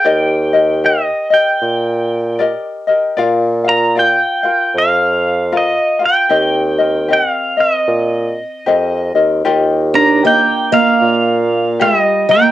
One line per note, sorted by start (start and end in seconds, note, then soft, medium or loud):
0.00 0.88 G5 medium
0.05 1.07 D#2 medium
0.05 0.53 G4 medium
0.05 0.53 A#4 medium
0.05 0.53 D5 medium
0.05 0.52 D#5 medium
0.53 0.83 G4 soft
0.53 0.83 A#4 soft
0.53 0.83 D#5 medium
0.84 1.31 G4 soft
0.84 1.31 A#4 medium
0.84 1.29 D#5 medium
1.30 2.38 G4 soft
1.30 2.39 A#4 soft
1.30 2.40 D#5 soft
1.30 2.37 G5 medium
1.62 2.50 A#2 medium
2.39 2.88 G4 medium
2.39 2.87 A#4 medium
2.39 2.88 D5 medium
2.39 2.86 D#5 medium
2.87 3.16 G4 soft
2.87 3.17 A#4 medium
2.87 3.18 D#5 soft
3.17 4.20 A#2 medium
3.17 3.66 F4 medium
3.17 3.64 A#4 medium
3.17 3.66 D5 medium
3.17 3.63 F5 medium
3.64 3.95 F4 soft
3.64 3.96 A#4 soft
3.64 3.96 F5 soft
3.69 3.99 A#5 medium
3.95 4.44 F4 soft
3.95 4.43 A#4 medium
3.95 4.44 D5 medium
3.95 4.42 F5 medium
3.95 4.79 G5 medium
4.43 5.51 F4 soft
4.43 5.52 A#4 soft
4.43 5.52 F5 soft
4.74 5.76 F2 medium
4.74 5.57 F5 medium
5.52 6.00 F4 medium
5.52 5.99 A#4 medium
5.52 5.98 F5 medium
5.57 6.05 D#5 medium
5.99 6.30 F4 soft
5.99 6.29 A#4 soft
5.99 6.30 F5 soft
6.06 7.13 G5 medium
6.29 7.19 D#2 medium
6.29 6.79 C4 medium
6.29 6.79 G4 medium
6.29 6.78 A#4 medium
6.29 6.77 D#5 medium
6.78 7.08 C4 soft
6.78 7.09 A#4 soft
6.78 7.09 D#5 soft
7.08 7.58 C4 soft
7.08 7.57 G4 soft
7.08 7.57 A#4 medium
7.08 7.56 D#5 medium
7.13 7.31 F#5 medium
7.31 7.61 F5 medium
7.57 8.66 C4 soft
7.57 8.67 A#4 soft
7.57 8.68 D#5 soft
7.57 9.12 D#5 medium
7.88 8.39 A#2 medium
8.66 9.10 F2 medium
8.66 9.15 C4 medium
8.66 9.14 G4 medium
8.66 9.15 A#4 medium
8.66 9.14 D#5 medium
9.14 9.42 D#2 medium
9.14 9.45 C4 soft
9.14 9.44 A#4 soft
9.14 9.45 D#5 medium
9.45 10.46 D#2 medium
9.45 9.93 F4 medium
9.45 9.93 G4 medium
9.45 9.93 A#4 medium
9.45 9.94 D#5 loud
9.94 10.22 D4 medium
9.94 10.23 F4 soft
9.94 10.23 A#4 soft
9.94 10.25 A#5 medium
10.23 10.69 A#3 medium
10.23 10.72 F4 soft
10.23 10.71 G4 soft
10.23 10.71 A#4 medium
10.23 10.71 D#5 medium
10.27 10.74 G5 medium
10.72 11.76 A#3 medium
10.72 11.80 F4 soft
10.72 11.81 A#4 soft
10.72 11.81 D#5 soft
10.72 11.84 F5 medium
11.01 11.89 A#2 medium
11.80 11.98 G#3 medium
11.80 12.28 F4 medium
11.80 12.28 G4 medium
11.80 12.29 A#4 medium
11.80 12.28 D#5 medium
11.80 12.01 E5 medium
11.98 12.25 G3 medium
11.98 12.30 D#5 medium
12.29 12.52 A#3 medium
12.29 12.52 F4 soft
12.29 12.52 A#4 soft
12.29 12.52 D#5 soft
12.29 12.52 G5 medium